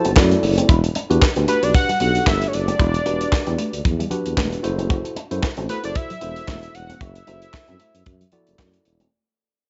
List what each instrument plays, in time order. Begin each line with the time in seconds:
Already playing: analog synth lead A5
0.05 tuba F#1, clean electric guitar B3, closed hi-hat
0.16 tuba F#2, tine electric piano E4 F#4 A4 D5, kick, snare, clap, high conga
0.31 clean electric guitar A3, closed hi-hat
0.43 tuba F#1, muted clean electric guitar stroke, open hi-hat, high conga
0.57 clean electric guitar C4, closed hi-hat, high conga
0.69 tuba E1, clean electric guitar E4, kick, closed hi-hat
0.84 muted clean electric guitar stroke, closed hi-hat
0.95 clean electric guitar D4, closed hi-hat, muted conga
1.10 tuba E2, tine electric piano D4 F#4 G4 B4, closed hi-hat
1.22 muted clean electric guitar stroke, kick, snare, clap, high conga
1.36 tuba D2, clean electric guitar B3, tine electric piano D4 F#4 G4 B4, closed hi-hat
1.48 clean electric guitar A3, tine electric piano D4 F#4 G4 B4, analog synth lead B4, closed hi-hat
1.62 tuba B1, tine electric piano D4 F#4 G4 B4, analog synth lead D5, closed hi-hat
1.74 analog synth lead F#5, muted clean electric guitar stroke, kick, closed hi-hat
1.89 clean electric guitar G3, closed hi-hat
2.00 tuba B1, clean electric guitar B3, tine electric piano D4 F#4 G4 A4, analog synth lead F#5, closed hi-hat
2.15 closed hi-hat
2.27 tuba G1, clean electric guitar A3, analog synth lead E5, kick, snare, clap, high conga
2.42 closed hi-hat
2.48 analog synth lead C#5
2.53 tuba F#1, analog synth lead D5, muted clean electric guitar stroke, closed hi-hat
2.68 clean electric guitar B3, closed hi-hat, high conga
2.79 tuba E1, clean electric guitar E4, kick, closed hi-hat
2.94 muted clean electric guitar stroke, closed hi-hat
3.05 tuba E1, tine electric piano D4 F#4 G4 B4, clean electric guitar D4, closed hi-hat, muted conga
3.21 closed hi-hat
3.32 tuba E2, muted clean electric guitar stroke, kick, snare, clap, high conga
3.47 tuba E2, clean electric guitar B3, closed hi-hat
3.58 clean electric guitar A3, closed hi-hat
3.73 tuba D2, closed hi-hat
3.85 tuba E2, muted clean electric guitar stroke, kick, closed hi-hat, muted conga, low conga
3.99 clean electric guitar G3, closed hi-hat
4.11 clean electric guitar B3, tine electric piano D4 F#4 G4 B4, closed hi-hat, low conga
4.26 tuba E2, closed hi-hat
4.37 tuba E1, clean electric guitar A3, kick, snare, clap, high conga
4.53 closed hi-hat
4.63 tuba F#1, tine electric piano E4 F#4 A4 C5, muted clean electric guitar stroke, closed hi-hat
4.78 clean electric guitar C4, closed hi-hat, high conga
4.90 clean electric guitar F#4, kick, closed hi-hat, muted conga
5.05 muted clean electric guitar stroke, closed hi-hat
5.16 clean electric guitar D4, closed hi-hat, muted conga
5.31 tuba F#2, tine electric piano E4 F#4 A4 C5, closed hi-hat
5.42 muted clean electric guitar stroke, kick, snare, clap, high conga
5.57 tuba A1, clean electric guitar C4, tine electric piano E4 F#4 A4 C5, closed hi-hat
5.69 clean electric guitar A3, tine electric piano E4 F#4 A4 C5, analog synth lead B4, closed hi-hat
5.83 tuba F#1, tine electric piano E4 F#4 A4 C5, analog synth lead D5, closed hi-hat
5.95 analog synth lead E5, kick, closed hi-hat
6.10 clean electric guitar F#3, closed hi-hat
6.21 tuba E1, clean electric guitar B3, tine electric piano E4 F#4 A4 C5, closed hi-hat
6.36 closed hi-hat
6.48 tuba E1, clean electric guitar A3, kick, snare, clap, high conga
6.63 closed hi-hat
6.75 tuba E1, analog synth lead F#5, muted clean electric guitar stroke, closed hi-hat
6.89 clean electric guitar C4, closed hi-hat, high conga
6.95 analog synth lead F#5
7.01 tuba F#1, clean electric guitar F#4, analog synth lead E5, kick, closed hi-hat, muted conga
7.15 muted clean electric guitar stroke, closed hi-hat
7.27 tuba F#1, clean electric guitar D4, tine electric piano E4 F#4 A4 C5, closed hi-hat, muted conga
7.42 closed hi-hat
7.53 tuba F#2, muted clean electric guitar stroke, kick, snare, clap, high conga
7.68 tuba F#2, clean electric guitar C4, closed hi-hat
7.80 clean electric guitar A3, closed hi-hat
7.95 tuba F#2, closed hi-hat
8.06 tuba F#2, muted clean electric guitar stroke, kick, closed hi-hat, low conga
8.21 clean electric guitar F#3, closed hi-hat
8.32 clean electric guitar B3, tine electric piano E4 F#4 A4 D5, closed hi-hat, low conga
8.47 tuba F#1, closed hi-hat
8.59 tuba F#2, clean electric guitar A3, kick, snare, clap, high conga
8.73 closed hi-hat
8.85 tuba E1, muted clean electric guitar stroke, closed hi-hat
9.00 clean electric guitar C4, closed hi-hat, high conga